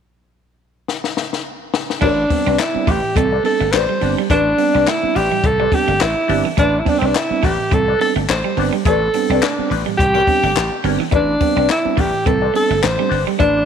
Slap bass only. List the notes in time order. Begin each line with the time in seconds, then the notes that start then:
2.02 A1
2.47 C2
2.75 muted slap bass stroke
2.88 A1
3.16 C2
3.61 G1
3.73 A1
4.02 G1
4.30 A1
4.75 C2
5.03 muted slap bass stroke
5.16 A1
5.44 C2
5.88 G1
6.01 A1
6.29 G1
6.58 A1
7.02 C2
7.31 muted slap bass stroke
7.43 A1
7.72 C2
8.16 G1
8.29 A1
8.57 G1
8.86 A1
9.29 C2
9.59 muted slap bass stroke
9.71 A1
9.99 C2
10.43 G1
10.56 A1
10.84 G1
11.13 A1
11.56 C2
11.86 muted slap bass stroke
11.98 A1
12.26 C2
12.70 G1
12.83 A1
13.11 G1
13.40 A1